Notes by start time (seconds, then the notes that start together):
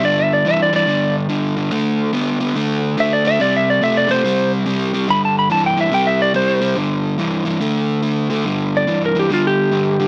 0.03 G2 D3 D5
0.19 E5
0.33 D5
0.45 G2 E3 E5
0.63 D5
0.73 G2 E3 D5
0.87 G2 D3
1.29 G2 D3
1.57 G2 D3
1.71 D3 A3
2.13 D3 B3
2.40 D3 B3
2.55 D3 A3
2.97 D3 A3 E5
3.13 D5
3.25 D3 A3 E5
3.40 C3 G3 D5
3.57 E5
3.70 D5
3.82 C3 A3 E5
3.97 D5
4.08 C3 A3 C5
4.24 C3 G3
4.66 C3 G3
4.94 C3 G3
5.08 G2 D3 B5
5.25 A5
5.39 B5
5.50 G2 E3 A5
5.66 G5
5.77 G2 E3
5.81 E5
5.92 C3 G3 G5
6.07 E5
6.22 D5
6.34 C3 G3 C5
6.61 C3 G3
6.76 G2 D3
7.18 G2 E3
7.45 G2 E3
7.61 D3 A3
8.02 D3 A3
8.30 D3 A3
8.45 G2 D3
8.77 D5
8.87 G2 E3
9.06 A#4
9.15 G2 E3
9.20 G4
9.30 G2 D3 F4
9.47 G4
9.71 G2 D3
10.00 G2 D3